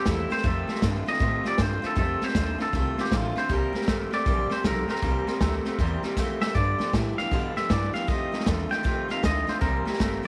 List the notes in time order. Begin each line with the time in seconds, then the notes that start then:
0.04 E2 C3 E3 A3 A#3 C4 E4 G4, kick, snare, hi-hat pedal
0.30 C3 A3 A#3 C4 G4 C5, muted upright bass stroke, snare
0.37 snare
0.43 F2 C3 D#3 A3 C4 F4 A4, kick, snare
0.67 F2 C3 D#3 A3 C4 F4, muted upright bass stroke, snare
0.75 snare
0.82 F2 G2 D3 D#3 A3 C4 F4, kick, snare, hi-hat pedal
1.06 F2 D3 D#3 A3 C4 F4 D#5, muted upright bass stroke, snare
1.14 snare
1.19 F2 A2 C3 D#3 A3 C4 F4, kick, snare
1.44 F2 C3 D#3 A3 C4 F4 D5, muted upright bass stroke, snare
1.57 F2 G2 D3 D#3 A3 C4 F4 C5, kick, snare, hi-hat pedal
1.82 F2 D3 D#3 A3 C4 F4, muted upright bass stroke, snare
1.86 A4
1.95 F2 C3 D#3 A3 C4 F4 A4, kick, snare
2.21 F2 C3 D#3 A3 C4 F4 C5, muted upright bass stroke, snare
2.28 snare
2.34 D#2 F2 D3 D#3 A3 C4 F4, kick, snare, hi-hat pedal
2.58 F2 D3 D#3 A3 C4 F4 A4, snare
2.73 C2 F2 C3 D#3 A3 C4 F4, kick, snare
2.97 F2 C3 D#3 A3 C4 F4 G4, muted upright bass stroke, snare
3.05 snare
3.11 A1 F2 D3 D#3 A3 C4 F4, kick, snare, hi-hat pedal
3.36 F2 D3 D#3 A3 C4 F4 C5, snare
3.49 C2 C3 E3 G3 A#3 C4 G4 A#4, kick, snare
3.73 C3 G3 A#3 C4 G4, muted upright bass stroke, snare
3.81 snare
3.87 G1 C3 E3 A3 A#3 C4 G4, kick, snare, hi-hat pedal
4.11 C3 A3 A#3 C4 G4 D5, snare
4.25 A#1 C3 E3 G3 A#3 C4 G4, kick, snare
4.50 C3 G3 A#3 C4 G4 C5, snare
4.63 B1 C3 E3 A3 A#3 C4 G4 A#4, kick, snare, hi-hat pedal
4.88 C3 A3 A#3 C4 G4 A#4, snare
4.96 snare
5.02 C2 C3 E3 G3 A#3 C4 G4, kick, snare
5.27 C3 G3 A#3 C4 G4, muted upright bass stroke, snare
5.40 D2 C3 E3 A3 A#3 C4 G4, kick, snare, hi-hat pedal
5.65 C3 A3 A#3 C4 G4, muted upright bass stroke, snare
5.78 E2 C3 E3 G3 A#3 C4 G4, kick, snare
6.03 C3 G3 A#3 C4 G4, muted upright bass stroke, snare
6.17 F2 C3 E3 A3 A#3 C4 G4, kick, snare, hi-hat pedal
6.41 C3 A3 A#3 C4 G4 E5, muted upright bass stroke, snare
6.55 G2 D3 F3 B3 D4 G4 D5, kick, snare
6.78 G2 D3 F3 B3 D4 G4, muted upright bass stroke, snare
6.93 G2 A2 E3 F3 B3 D4 G4, kick, snare, hi-hat pedal
7.18 G2 E3 F3 B3 D4 G4 F5, muted upright bass stroke, snare
7.31 G2 B2 D3 F3 B3 D4 G4, kick, snare
7.56 G2 D3 F3 B3 D4 G4 E5, muted upright bass stroke, snare
7.69 G2 E3 F3 B3 D4 G4 D5, kick, snare, hi-hat pedal
7.93 G2 E3 F3 B3 D4 G4 F5, muted upright bass stroke, snare
8.07 F2 C3 D#3 A3 D#4 F4 D#5, kick, snare
8.32 F2 C3 D#3 A3 D#4 F4, muted upright bass stroke, snare
8.40 snare
8.45 E2 F2 D3 D#3 A3 D#4 F4, kick, snare, hi-hat pedal
8.69 F2 D3 D#3 A3 D#4 F4 G5, muted upright bass stroke, snare
8.83 D#2 F2 C3 D#3 A3 D#4 F4, kick, snare
9.08 F2 C3 D#3 A3 D#4 F4 F5, muted upright bass stroke, snare
9.23 D2 F2 D3 D#3 A3 D#4 F4 D#5, kick, snare, hi-hat pedal
9.47 F2 D3 D#3 A3 D#4 F4 C5, snare
9.61 C2 C3 E3 G3 A#3 C4 G4 A#4, kick, snare
9.85 C3 G3 A#3 C4 G4, muted upright bass stroke, snare
9.93 snare
9.98 G1 C3 E3 A3 A#3 C4 G4, kick, snare, hi-hat pedal
10.23 G4